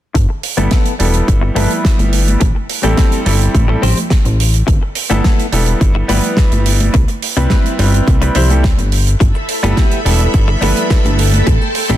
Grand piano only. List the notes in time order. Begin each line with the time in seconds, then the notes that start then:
0.57 G3 B3 E4 A4
0.99 G3 B3 E4 A4
1.55 G3 B3 E4 B4
2.84 G3 C4 E4 A4
3.26 G3 C4 E4 A4
3.68 G3 C4 E4 A4
5.10 G3 B3 E4 A4
5.52 G3 B3 E4 A4
6.08 G3 B3 E4 B4
7.37 G3 C4 E4 B4
7.79 G3 C4 E4 B4
8.21 G3 C4 E4 B4
8.35 G3 C4 E4 C5
8.49 G3 C4 E4 A4
9.63 G3 B3 E4 A4
10.05 G3 B3 E4 A4
10.61 G3 B3 E4 B4
11.89 G3 C4 E4 A4